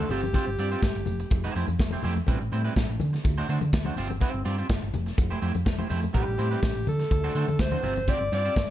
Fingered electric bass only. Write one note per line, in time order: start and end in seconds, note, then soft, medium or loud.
0.10 0.34 G1 medium
0.47 0.54 G1 medium
0.59 0.74 G2 medium
0.83 0.91 G1 medium
0.96 1.03 G1 medium
1.07 1.23 F1 loud
1.31 1.47 F1 loud
1.55 1.64 F2 medium
1.68 1.75 F2 medium
2.04 2.19 F2 medium
2.28 2.36 A1 loud
2.41 2.48 A1 medium
2.52 2.68 A2 medium
2.76 2.84 A1 medium
2.89 2.96 A1 medium
3.00 3.16 D3 medium
3.25 3.40 D2 loud
3.49 3.57 D3 medium
3.62 3.69 D3 medium
3.73 3.89 D2 medium
3.97 4.21 G1 medium
4.34 4.41 G1 medium
4.46 4.61 G2 medium
4.70 4.78 G1 medium
4.83 4.90 G1 medium
4.94 5.10 F1 medium
5.18 5.34 F1 loud
5.42 5.50 F2 medium
5.55 5.62 F2 medium
5.66 5.82 F1 medium
5.91 6.06 F2 medium
6.15 6.23 A1 medium
6.28 6.35 A1 medium
6.39 6.54 A2 medium
6.63 6.71 A1 medium
6.75 6.83 A1 medium
6.87 7.02 D3 loud
7.11 7.27 D2 medium
7.35 7.43 D3 loud
7.48 7.56 D3 loud
7.59 7.75 D2 medium
7.83 8.08 G1 medium
8.21 8.28 G1 medium
8.32 8.48 G2 medium
8.56 8.65 G1 medium